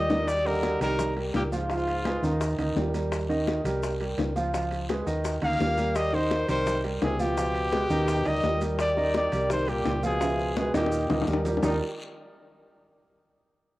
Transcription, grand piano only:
0.10 0.24 D#3 medium
0.10 0.24 D#4 medium
0.10 0.25 D#5 medium
0.45 0.74 G3 medium
0.45 0.75 G4 medium
0.45 0.75 D#5 medium
0.81 1.10 G3 medium
0.81 1.10 G4 medium
0.81 1.10 A#4 medium
1.16 1.45 G3 medium
1.16 1.46 G4 medium
1.16 1.46 A#4 medium
1.52 1.66 F3 medium
1.52 1.67 F4 medium
1.52 1.67 F5 medium
1.70 1.99 F3 medium
1.70 1.99 F4 medium
1.70 1.99 F5 medium
2.06 2.20 G#3 medium
2.06 2.20 G#4 medium
2.06 2.20 B4 medium
2.23 2.52 D#3 medium
2.23 2.52 D#4 medium
2.23 2.53 D#5 medium
2.58 2.73 D#3 medium
2.58 2.73 D#4 medium
2.58 2.73 D#5 medium
2.76 2.91 G3 medium
2.76 2.91 G4 medium
2.76 2.91 A#4 medium
2.94 3.23 G3 medium
2.94 3.23 G4 medium
2.94 3.23 A#4 medium
3.29 3.58 D#3 medium
3.29 3.58 D#4 medium
3.29 3.59 D#5 medium
3.65 3.94 G3 medium
3.65 3.94 G4 medium
3.65 3.94 A#4 medium
4.00 4.29 G3 medium
4.00 4.30 G4 medium
4.00 4.30 A#4 medium
4.36 4.50 F3 medium
4.36 4.50 F4 medium
4.36 4.51 F5 medium
4.53 4.83 F3 medium
4.53 4.83 F4 medium
4.53 4.83 F5 medium
4.89 5.04 G#3 medium
4.89 5.04 G#4 medium
4.89 5.04 B4 medium
5.06 5.35 D#3 medium
5.06 5.36 D#4 medium
5.06 5.36 D#5 medium
5.42 5.56 D#3 medium
5.42 5.57 D#4 medium
5.42 5.57 D#5 medium
5.59 5.74 G3 medium
5.59 5.74 G4 medium
5.59 5.75 A#4 medium
5.78 6.07 G3 medium
5.78 6.07 G4 medium
5.78 6.07 A#4 medium
6.13 6.42 D#3 medium
6.13 6.42 D#4 medium
6.13 6.42 D#5 medium
6.48 6.77 G3 medium
6.48 6.78 G4 medium
6.48 6.78 A#4 medium
6.84 7.13 G3 medium
6.84 7.13 G4 medium
6.84 7.13 A#4 medium
7.19 7.34 F3 medium
7.19 7.34 F4 medium
7.19 7.34 F5 medium
7.37 7.66 F3 medium
7.37 7.67 F4 medium
7.37 7.67 F5 medium
7.72 7.87 G#3 medium
7.72 7.87 G#4 medium
7.72 7.87 B4 medium
7.90 8.19 D#3 medium
7.90 8.20 D#4 medium
7.90 8.20 D#5 medium
8.26 8.40 D#3 medium
8.26 8.40 D#4 medium
8.26 8.41 D#5 medium
8.44 8.58 G3 medium
8.44 8.58 G4 medium
8.44 8.58 A#4 medium
8.62 8.91 G3 medium
8.62 8.91 G4 medium
8.62 8.91 A#4 medium
8.97 9.26 D#3 medium
8.97 9.26 D#4 medium
8.97 9.26 D#5 medium
9.32 9.61 G3 medium
9.32 9.61 G4 medium
9.32 9.61 A#4 medium
9.67 9.97 G3 medium
9.67 9.97 G4 medium
9.67 9.97 A#4 medium
10.03 10.17 F3 medium
10.03 10.18 F4 medium
10.03 10.18 F5 medium
10.21 10.50 F3 medium
10.21 10.50 F4 medium
10.21 10.50 F5 medium
10.56 10.71 G#3 medium
10.56 10.71 G#4 medium
10.56 10.71 B4 medium
10.74 11.03 D#3 medium
10.74 11.03 D#4 medium
10.74 11.03 D#5 medium
11.09 11.24 D#3 medium
11.09 11.24 D#4 medium
11.09 11.24 D#5 medium
11.27 11.42 G3 medium
11.27 11.42 G4 medium
11.27 11.42 A#4 medium
11.45 11.60 G3 medium
11.45 11.60 G4 medium
11.45 11.60 A#4 medium
11.62 11.79 D#3 medium
11.62 11.79 A#3 medium
11.62 11.79 D4 medium
11.62 11.79 D#4 medium
11.62 11.79 G4 medium
11.62 11.79 A#4 medium

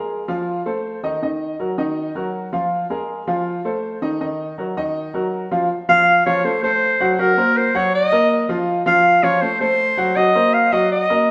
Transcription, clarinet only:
5.89 6.23 F5 loud
6.26 6.47 C#5 medium
6.45 6.63 C5 medium
6.63 7.13 C5 medium
7.13 7.21 C5 medium
7.20 7.59 A#4 medium
7.58 7.78 C5 medium
7.76 7.94 C#5 medium
7.95 8.46 D#5 medium
8.87 9.25 F5 loud
9.23 9.43 C#5 medium
9.41 9.60 C5 medium
9.60 10.18 C5 loud
10.16 10.55 D#5 loud
10.54 10.74 F5 medium
10.72 10.91 D#5 medium
10.92 11.31 D#5 medium

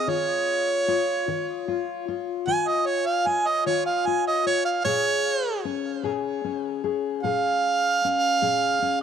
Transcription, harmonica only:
0.00 0.10 D#5 medium
0.09 1.63 C#5 medium
2.47 2.69 G#5 loud
2.68 2.88 D#5 medium
2.86 3.07 C#5 medium
3.06 3.28 F5 medium
3.27 3.48 G#5 medium
3.46 3.65 D#5 medium
3.66 3.84 C#5 medium
3.86 4.07 F5 medium
4.06 4.24 G#5 loud
4.27 4.45 D#5 medium
4.47 4.64 C#5 loud
4.65 4.83 F5 medium
4.85 5.62 C#5 loud
7.23 8.97 F5 loud

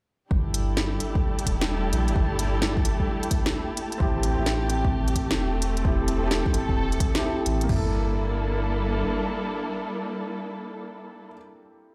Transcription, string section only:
0.31 3.97 G3 medium
0.31 3.97 D4 medium
0.31 3.97 E4 medium
0.31 3.97 G4 medium
0.31 3.97 A4 medium
4.00 7.66 A3 medium
4.00 7.66 C4 medium
4.00 5.83 G4 medium
5.85 7.68 A4 medium
7.69 11.30 G3 medium
7.69 11.30 A#3 medium
7.69 11.31 D4 medium
7.69 11.31 E4 medium
7.69 11.30 A4 medium

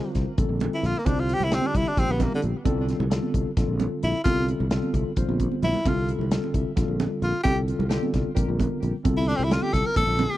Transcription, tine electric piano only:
0.00 0.31 D3 medium
0.00 0.31 G3 medium
0.00 0.31 C4 medium
0.00 0.31 F4 medium
0.00 0.31 C5 medium
0.38 0.96 D3 medium
0.38 0.96 G3 medium
0.38 0.97 C4 medium
0.38 0.97 F4 medium
0.38 0.96 A4 medium
1.06 1.45 D3 medium
1.06 1.45 G3 medium
1.06 1.45 C4 medium
1.06 1.45 F4 medium
1.06 1.45 C5 medium
1.50 1.90 D3 medium
1.50 1.90 G3 medium
1.50 1.90 C4 medium
1.50 1.90 F4 medium
1.50 1.91 G4 medium
1.96 2.55 D3 medium
1.96 2.55 G3 medium
1.96 2.56 C4 medium
1.96 2.56 F4 medium
1.96 2.56 G4 medium
2.65 3.05 D3 medium
2.65 3.04 G3 medium
2.65 3.05 C4 medium
2.65 3.04 F4 medium
2.65 3.05 A4 loud
3.10 3.50 D3 medium
3.10 3.50 G3 medium
3.10 3.50 C4 medium
3.10 3.50 F4 medium
3.10 3.50 A4 medium
3.57 4.16 D3 medium
3.57 4.16 G3 medium
3.57 4.16 C4 medium
3.57 4.16 F4 medium
3.57 4.16 A4 medium
4.26 4.65 D3 medium
4.26 4.65 G3 medium
4.26 4.65 C4 medium
4.26 4.65 F4 medium
4.26 4.65 A4 medium
4.72 5.11 D3 medium
4.72 5.11 G3 medium
4.72 5.11 C4 medium
4.72 5.11 F4 medium
4.72 5.11 A4 medium
5.17 5.76 D3 medium
5.17 5.76 G3 medium
5.17 5.76 C4 medium
5.17 5.76 F4 medium
5.17 5.76 C5 medium
5.86 6.25 D3 medium
5.86 6.25 G3 medium
5.86 6.25 C4 medium
5.86 6.25 F4 medium
5.86 6.25 A4 medium
6.32 6.71 D3 medium
6.32 6.70 G3 medium
6.32 6.70 C4 medium
6.32 6.70 F4 medium
6.32 6.71 A4 medium
6.76 7.35 D3 medium
6.76 7.35 G3 medium
6.76 7.35 C4 medium
6.76 7.35 F4 medium
6.76 7.35 A4 medium
7.44 7.83 D3 medium
7.44 7.84 G3 medium
7.44 7.83 C4 medium
7.44 7.84 F4 medium
7.44 7.84 A4 medium
7.89 8.29 D3 medium
7.89 8.29 G3 medium
7.89 8.29 C4 medium
7.89 8.29 F4 medium
7.89 8.29 A4 medium
8.35 8.94 D3 medium
8.35 8.94 G3 medium
8.35 8.94 C4 medium
8.35 8.94 F4 medium
8.35 8.94 A#4 medium
9.04 9.44 D3 medium
9.04 9.43 G3 medium
9.04 9.43 C4 medium
9.04 9.44 F4 medium
9.04 9.44 A4 loud
9.49 9.89 D3 medium
9.49 9.89 G3 medium
9.49 9.89 C4 medium
9.49 9.89 F4 medium
9.49 9.89 A4 medium
9.96 10.38 D3 medium
9.96 10.38 G3 medium
9.96 10.38 A#3 medium
9.96 10.38 C4 medium
9.96 10.38 F4 medium

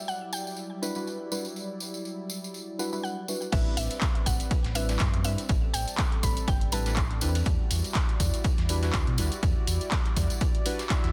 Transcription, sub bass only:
3.53 3.64 A1 loud
3.77 3.88 A1 medium
4.26 4.38 A1 medium
4.65 4.97 A1 loud
5.00 5.11 G2 medium
5.14 5.26 F#2 loud
5.25 5.36 G2 medium
5.49 5.61 A1 loud
5.74 5.85 A1 medium
6.23 6.34 A1 medium
6.48 6.69 G1 medium
6.72 7.23 A1 loud
7.22 7.42 E2 medium
7.46 7.57 E2 loud
7.71 7.82 E2 medium
8.20 8.31 E2 medium
8.58 8.91 E2 loud
8.94 9.05 D2 medium
9.07 9.20 B2 loud
9.18 9.29 D2 medium
9.43 9.54 E2 loud
9.67 9.79 E2 medium
10.17 10.28 E2 medium
11.04 11.12 E2 medium

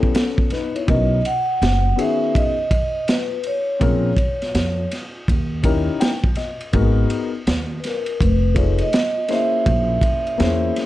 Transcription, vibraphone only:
0.89 1.23 D#5 medium
1.26 1.95 F#5 medium
2.00 2.37 E5 medium
2.36 3.11 D#5 medium
3.10 3.47 B4 medium
3.47 4.88 C#5 medium
7.80 7.84 B4 medium
7.86 8.23 A#4 medium
8.23 8.83 B4 medium
8.82 9.33 D#5 medium
9.33 10.74 E5 medium

